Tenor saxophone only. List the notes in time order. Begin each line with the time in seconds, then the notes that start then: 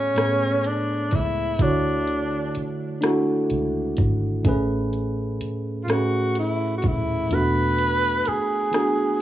Already playing: C#4
0.66 D4
1.15 E4
1.62 D4
5.84 F4
5.91 F#4
6.39 E4
6.78 F#4
6.87 E4
7.34 B4
8.28 G#4